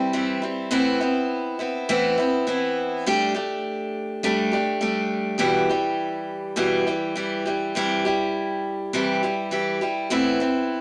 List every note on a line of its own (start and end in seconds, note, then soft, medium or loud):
0.00 0.12 G3 soft
0.00 0.13 C4 medium
0.00 0.13 E4 medium
0.13 0.42 E3 medium
0.13 0.42 G3 medium
0.13 0.42 C4 medium
0.13 0.40 E4 medium
0.42 0.71 G3 soft
0.42 0.70 C4 soft
0.42 0.71 E4 medium
0.71 1.01 A2 medium
0.71 1.00 E3 medium
0.71 1.00 B3 medium
0.71 1.01 C4 medium
0.71 0.99 E4 loud
1.00 1.59 B3 medium
1.00 1.60 C4 soft
1.00 1.58 E4 medium
1.59 1.89 B3 medium
1.59 1.88 C4 soft
1.59 1.89 E4 medium
1.89 2.18 A2 medium
1.89 2.18 E3 medium
1.89 2.18 B3 medium
1.89 2.18 C4 loud
1.89 2.16 E4 loud
2.18 2.47 B3 medium
2.18 2.46 C4 medium
2.18 2.47 E4 medium
2.47 3.06 E3 medium
2.47 3.06 B3 medium
2.47 3.06 C4 medium
2.47 3.07 E4 medium
3.06 3.36 G3 medium
3.06 3.35 A3 medium
3.06 3.34 D4 loud
3.06 3.33 G4 loud
3.35 4.23 A3 soft
3.35 4.23 D4 soft
3.35 4.23 G4 medium
4.23 4.53 G3 medium
4.23 4.53 A3 loud
4.23 4.52 D4 loud
4.23 4.50 G4 loud
4.52 4.80 A3 medium
4.52 4.81 D4 medium
4.52 4.82 G4 medium
4.81 5.37 G3 medium
4.81 5.38 A3 medium
4.81 5.39 D4 medium
4.81 5.38 G4 medium
5.38 5.69 E2 medium
5.38 5.69 B2 medium
5.38 5.69 E3 medium
5.38 5.69 G3 medium
5.38 5.69 E4 medium
5.38 5.68 G4 medium
5.69 6.57 E3 soft
5.69 6.56 G3 medium
5.69 6.57 E4 medium
5.69 6.57 G4 medium
6.56 6.86 E2 medium
6.56 6.87 B2 medium
6.56 6.87 E3 medium
6.56 6.87 G3 medium
6.56 6.86 E4 medium
6.56 6.85 G4 loud
6.87 7.14 E3 soft
6.87 7.15 G3 soft
6.87 7.15 E4 soft
6.87 7.16 G4 medium
7.15 7.46 E3 medium
7.15 7.46 G3 medium
7.15 7.46 E4 medium
7.15 7.44 G4 medium
7.46 7.75 E3 soft
7.46 7.76 G3 soft
7.46 7.76 E4 soft
7.46 7.75 G4 medium
7.75 8.05 C3 medium
7.75 8.05 E3 medium
7.75 8.06 G3 medium
7.75 8.05 E4 medium
7.75 8.04 G4 medium
8.05 8.93 G3 soft
8.05 8.94 E4 medium
8.05 8.93 G4 medium
8.93 9.23 C3 medium
8.93 9.23 E3 medium
8.93 9.23 G3 medium
8.93 9.22 E4 medium
8.93 9.22 G4 medium
9.23 9.50 G3 soft
9.23 9.51 E4 medium
9.23 9.51 G4 medium
9.51 9.81 E3 medium
9.51 9.81 G3 medium
9.51 9.81 E4 medium
9.51 9.80 G4 medium
9.81 10.11 G3 soft
9.81 10.11 E4 soft
9.81 10.11 G4 medium
10.10 10.40 A2 medium
10.10 10.40 E3 medium
10.10 10.40 B3 medium
10.10 10.40 C4 medium
10.10 10.39 E4 medium
10.40 10.81 B3 medium
10.40 10.81 C4 soft
10.40 10.81 E4 medium